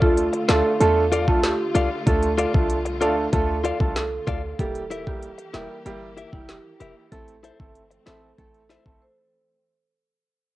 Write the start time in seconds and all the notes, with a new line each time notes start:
Already playing: D2 D3 A3 F4
0.01 A3 D4 F4 A4, kick
0.17 closed hi-hat
0.33 muted clean electric guitar stroke, closed hi-hat
0.48 D2 A3 D4 F4 A4 D5 F5, snare, clap, closed hi-hat
0.80 E2 A3 D4 F4 A4, closed hi-hat
1.12 F4 A4 D5 F5, closed hi-hat
1.28 D2 A3 D4 F4 A4, kick
1.43 G4, snare, clap, closed hi-hat
1.75 C2 F4 A4 D5 F5, closed hi-hat
2.06 D2 A3 D4 F4 A4, kick, closed hi-hat
2.23 closed hi-hat
2.38 F4 A4 D5 F5, closed hi-hat
2.54 C2 A3 D4 F4 A4, kick
2.70 closed hi-hat
2.85 muted clean electric guitar stroke, closed hi-hat
3.01 D2 A3 D4 F4 A4 D5 F5, closed hi-hat
3.33 D2 A3 D4 F4 A4, kick, closed hi-hat
3.64 F4 A4 D5 F5, closed hi-hat
3.80 C2 A3 D4 F4 A4, kick
3.96 A4, snare, clap, closed hi-hat
4.27 D2 F4 A4 D5 F5, kick, closed hi-hat
4.59 E1 E3 G3 A#3 E4 G4 A4, kick, closed hi-hat
4.75 closed hi-hat
4.91 E4 G4 A#4 E5, closed hi-hat
5.07 G3 A#3 E4 G4, kick
5.23 closed hi-hat
5.38 muted clean electric guitar stroke, closed hi-hat
5.54 E1 G3 A#3 E4 G4 A#4 E5, snare, clap, closed hi-hat
5.85 G1 G3 A#3 E4 G4 A#4, closed hi-hat
6.17 E4 G4 A#4 E5, closed hi-hat
6.33 F1 G3 A#3 E4 G4, kick
6.49 G4, snare, clap, closed hi-hat
6.80 E1 E4 G4 A#4 E5, closed hi-hat
7.12 A1 A3 C4 E4 A4, kick, closed hi-hat
7.28 closed hi-hat
7.43 E4 A4 C5 E5, closed hi-hat
7.59 G1 A3 C4 E4 A4, kick
7.75 closed hi-hat
7.91 muted clean electric guitar stroke, closed hi-hat
8.06 A1 A3 C4 E4 A4 C5 E5, snare, clap, closed hi-hat
8.38 A1 A3 C4 E4 A4, kick, closed hi-hat
8.54 closed hi-hat
8.69 E4 A4 C5 E5, snare, closed hi-hat
8.85 G1 A3 C4 E4 A4, kick
9.02 C5